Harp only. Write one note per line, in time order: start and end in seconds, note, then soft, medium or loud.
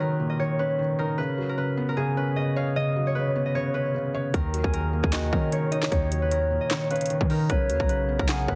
0.00 1.26 F#4 medium
0.00 0.99 G#4 medium
0.00 0.65 A#4 medium
0.00 0.39 C#5 loud
0.00 0.29 D#5 medium
0.30 2.08 D#5 medium
0.39 2.31 C#5 medium
0.59 1.05 B4 medium
0.99 1.24 A#4 medium
1.18 1.55 B4 loud
1.49 1.64 A#4 medium
1.58 1.95 B4 medium
1.89 2.23 A#4 medium
1.97 4.24 G#4 loud
2.17 3.15 B4 medium
2.36 2.76 D#5 medium
2.57 4.23 F5 medium
2.76 3.45 D#5 loud
3.07 3.55 C#5 medium
3.15 3.74 B4 medium
3.46 5.24 D#5 medium
3.55 5.46 C#5 loud
3.74 4.40 B4 medium
4.34 4.73 A#4 medium
4.63 5.02 G#4 medium
4.74 5.32 A#4 medium
5.03 7.30 G#4 medium
5.14 7.58 F#4 medium
5.33 6.28 A#4 medium
5.52 5.91 C#5 medium
5.72 6.60 D#5 medium
5.91 6.71 C#5 loud
6.22 6.38 B4 medium
6.32 6.97 A#4 medium
6.61 8.39 D#5 medium
6.71 8.55 C#5 medium
6.91 7.37 B4 medium
7.31 7.56 A#4 loud
7.50 7.87 B4 loud
7.81 7.95 A#4 medium
7.89 8.27 B4 medium
8.21 8.55 A#4 medium
8.28 8.55 G#4 loud
8.49 8.55 B4 medium